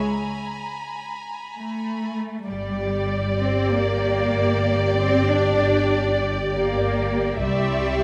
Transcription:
Already playing: violin section G#5 A#5 B5
1.56 cello section A3
2.47 double bass section G1, cello section G3, viola section G4, violin section D5
3.42 cello section C4
3.73 cello section A#3
4.96 cello section C4
5.26 cello section D4
6.51 cello section A#3
7.43 double bass section C2, cello section G3, viola section G4, violin section D5 E5 C6 C#6

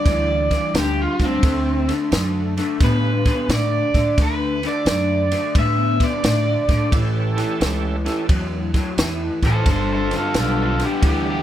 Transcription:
Already playing: overdriven electric guitar D5
0.05 upright bass D2, clean electric guitar G2 E3, kick, snare, ride
0.51 clean electric guitar G2 E3, kick, snare, ride
0.74 upright bass D2, clean electric guitar G2 D3, snare, ride
0.79 overdriven electric guitar G4
1.01 overdriven electric guitar F4
1.19 upright bass D2, clean electric guitar G2 D3, kick, snare, ride
1.25 overdriven electric guitar C4
1.43 upright bass D2, clean electric guitar D3 A3, kick, snare, ride
1.88 clean electric guitar D3 A3, snare, ride
2.12 upright bass F#2, clean electric guitar D3 A3, snare, ride
2.57 clean electric guitar D3 A3, snare, ride
2.80 upright bass A2, clean electric guitar D3 B3, overdriven electric guitar B4, kick, snare, ride
3.26 clean electric guitar D3 B3, kick, snare, ride
3.49 upright bass A2, clean electric guitar D3 A3, snare, ride
3.54 overdriven electric guitar D5
3.94 upright bass A2, clean electric guitar D3 A3, kick, snare, ride
4.17 upright bass D2, clean electric guitar D3 A3, kick, snare, ride
4.22 overdriven electric guitar B4
4.63 clean electric guitar D3 A3, snare, ride
4.67 overdriven electric guitar D5
4.85 upright bass F#2, clean electric guitar D3 A3, snare, ride
5.32 clean electric guitar D3 A3, snare, ride
5.55 upright bass A2, clean electric guitar D3 B3, overdriven electric guitar E5, kick, ride
6.00 clean electric guitar D3 B3, kick, snare, ride
6.04 overdriven electric guitar D5
6.23 upright bass A2, clean electric guitar D3 A3, snare, ride
6.68 upright bass A2, clean electric guitar D3 A3, kick, snare, ride
6.91 upright bass A1, clean electric guitar A2 E3, tonewheel organ A3 C#4 E4 G4 A4, kick, ride
7.37 clean electric guitar A2 E3, snare, ride
7.60 upright bass C#2, clean electric guitar A2 E3, snare, ride
8.04 clean electric guitar A2 E3, tonewheel organ A3 C#4 E4 G4 A4, snare, ride
8.29 upright bass E2, clean electric guitar A2 F#3, kick, ride
8.74 clean electric guitar A2 F#3, kick, snare, ride
8.98 upright bass E2, clean electric guitar A2 E3, snare, ride
9.42 upright bass A1, clean electric guitar A2 E3, overdriven electric guitar A4, kick, snare, ride
9.47 overdriven electric guitar C5
9.66 upright bass G1, clean electric guitar G2 D3, overdriven electric guitar A4, kick, snare, ride
9.70 overdriven electric guitar C5
9.93 overdriven electric guitar A4 C5
10.11 clean electric guitar G2 D3, snare, ride
10.16 overdriven electric guitar F4 A4
10.34 upright bass B1, clean electric guitar G2 D3, tonewheel organ B3 D4 F4 G4 B4, snare, ride
10.39 overdriven electric guitar F4 A4
10.62 overdriven electric guitar F4 A4
10.79 clean electric guitar G2 D3, snare, ride
10.84 overdriven electric guitar B3 G4
11.02 upright bass D2, clean electric guitar G2 E3, kick, ride
11.07 overdriven electric guitar B3 G4
11.30 overdriven electric guitar B3 G4

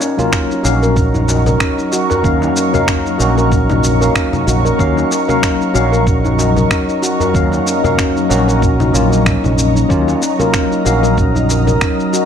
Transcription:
Already playing: ambient pad F#3 D#5 A#5 C#6
0.01 handpan C#4, darbuka ka, darbuka tek, shaker
0.17 tine electric piano F#3 A#3 C#4 F4, handpan A#4, low conga, shaker
0.33 handpan C#4, finger snap, kick, shaker
0.51 handpan D#4, shaker
0.63 fretless electric bass A#1, tine electric piano F#3 A#3 C#4 F5, handpan F#4, darbuka tek, shaker
0.83 handpan A#4, shaker
0.97 handpan C#4, kick, shaker
1.14 handpan D#4, darbuka dum, shaker
1.29 handpan F#4, darbuka tek, shaker
1.46 handpan A#4, darbuka ka, low conga, shaker
1.60 handpan C#4, finger snap, kick, shaker
1.78 handpan D#4, shaker
1.92 handpan F#4, darbuka ka, shaker
2.10 handpan A#4, darbuka tek, darbuka dum, shaker
2.23 fretless electric bass D#2, tine electric piano F#3 A#3 C#4 F5, handpan C#4, kick, shaker
2.42 handpan D#4, darbuka tek, shaker
2.56 handpan C#4, darbuka ka, darbuka tek, shaker
2.73 tine electric piano F#3 A#3 C#4 F5, handpan A#4, low conga, darbuka dum, shaker
2.88 handpan C#4, finger snap, kick, shaker
3.06 handpan D#4, shaker
3.18 fretless electric bass A#1, tine electric piano F#3 A#3 C#4 F#4, handpan F#4, darbuka tek, shaker
3.38 handpan A#4, shaker
3.52 handpan C#4, kick, shaker
3.70 handpan D#4, darbuka tek, low conga, darbuka dum, shaker
3.84 handpan F#4, shaker
4.00 tine electric piano F#3 A#3 C#4, handpan A#4, darbuka ka, shaker
4.04 tine electric piano F5
4.15 handpan C#4, finger snap, kick, shaker
4.33 handpan D#4, darbuka dum, low conga, shaker
4.47 fretless electric bass A#1, handpan F#4, shaker
4.65 handpan A#4, shaker
4.78 fretless electric bass D#2, tine electric piano F#3 A#3 C#4 F5, handpan C#4, kick, shaker
4.97 handpan D#4, darbuka ka, darbuka tek, shaker
5.11 handpan C#4, darbuka ka, darbuka tek, shaker
5.28 tine electric piano F#3 A#3 C#4 F5, handpan A#4, low conga, shaker
5.42 handpan C#4, finger snap, kick, shaker
5.61 handpan D#4, shaker
5.74 fretless electric bass A#1, tine electric piano F#3 A#3 C#4 F5, handpan F#4, darbuka tek, shaker
5.92 handpan A#4, shaker
6.07 handpan C#4, kick, shaker
6.25 handpan D#4, darbuka dum, shaker
6.39 handpan F#4, darbuka tek, shaker
6.57 handpan A#4, darbuka ka, low conga, shaker
6.71 handpan C#4, finger snap, kick, shaker
6.89 handpan D#4, shaker
7.02 handpan F#4, darbuka ka, shaker
7.20 handpan A#4, darbuka tek, darbuka dum, shaker
7.34 fretless electric bass D#2, tine electric piano F#3 A#3 C#4 F5, handpan C#4, kick, shaker
7.52 handpan D#4, darbuka tek, shaker
7.66 handpan C#4, darbuka ka, darbuka tek, shaker
7.83 tine electric piano F#3 A#3 C#4 F5, handpan A#4, darbuka dum, low conga, shaker
7.98 handpan C#4, finger snap, kick, shaker
8.16 handpan D#4, shaker
8.29 fretless electric bass A#1, tine electric piano F#3 A#3 C#4 F#4, handpan F#4, darbuka tek, shaker
8.48 handpan A#4, shaker
8.62 handpan C#4, kick, shaker
8.80 handpan D#4, darbuka tek, darbuka dum, low conga, shaker
8.93 fretless electric bass A#1, tine electric piano F#3 A#3 C#4 F4, handpan C#4, shaker
9.10 tine electric piano F#3 A#3 C#4, handpan C#4, darbuka ka, shaker
9.14 tine electric piano F#4
9.26 handpan C#4, finger snap, kick, shaker
9.44 fretless electric bass A#1, handpan D#4, low conga, darbuka dum, shaker
9.58 handpan C#4, darbuka tek, shaker
9.75 handpan D#4, shaker
9.89 fretless electric bass D#2, tine electric piano F#3 A#3 C#4 F4, handpan C#4, ambient pad D#6, kick, shaker
10.08 handpan D#4, darbuka ka, darbuka tek, shaker
10.22 handpan C#4, darbuka ka, darbuka tek, shaker
10.39 tine electric piano F#3 A#3 C#4 F4, handpan A#4, low conga, shaker
10.54 handpan C#4, finger snap, kick, shaker
10.72 handpan D#4, shaker
10.84 fretless electric bass A#1, tine electric piano F#3 A#3 C#4 F5, handpan F#4, darbuka tek, shaker
11.03 handpan A#4, shaker
11.17 handpan C#4, kick, shaker
11.35 handpan D#4, darbuka dum, shaker
11.49 handpan F#4, darbuka tek, shaker
11.67 handpan A#4, darbuka ka, low conga, shaker
11.81 handpan C#4, finger snap, kick, shaker
11.99 handpan D#4, shaker
12.13 handpan F#4, darbuka ka, shaker

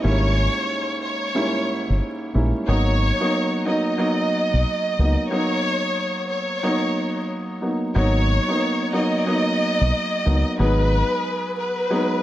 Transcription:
0.03 fingered electric bass G#1, upright piano G#2 G3 A#3 C#4 E4, violin section C#5
1.02 violin section C#5
1.35 upright piano G#2 G3 A#3 C#4 E4
1.90 fingered electric bass G1
2.34 fingered electric bass A#1, upright piano G#2 G3 A#3 C#4 E4
2.67 fingered electric bass G#1, upright piano F#3 A#3 B3 D#4, violin section C#5
3.20 upright piano F#3 A#3 B3 D#4
3.65 upright piano F#3 A#3 B3 D#4, violin section D#5
3.98 upright piano F#3 A#3 B3 D#4
4.54 fingered electric bass B1
4.99 fingered electric bass C#2, upright piano F#3 A#3 B3 D#4
5.31 upright piano F#3 A#3 B3 D#4, violin section C#5
6.30 violin section C#5
6.63 upright piano F#3 A#3 B3 D#4
7.61 upright piano F#3 A#3 B3 D#4
7.95 fingered electric bass G#1, upright piano F#3 A#3 B3 D#4, violin section C#5
8.48 upright piano F#3 A#3 B3 D#4
8.93 upright piano F#3 A#3 B3 D#4, violin section D#5
9.26 upright piano F#3 A#3 B3 D#4
9.81 fingered electric bass B1
10.25 fingered electric bass C#2, upright piano F#3 A#3 B3 D#4
10.59 fingered electric bass G#1, upright piano F#3 G#3 B3 D#4, violin section B4
11.58 violin section B4
11.90 upright piano F#3 G#3 B3 D#4

